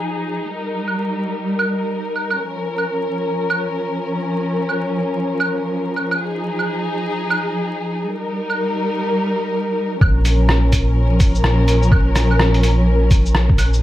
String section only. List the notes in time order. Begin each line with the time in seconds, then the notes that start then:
Already playing: F3 D#4 G#4
0.49 G3 A#4
2.39 F3 C#4
6.20 D#4 G#4
8.11 G3 D#4 A#4
10.01 F3 C#4 A#4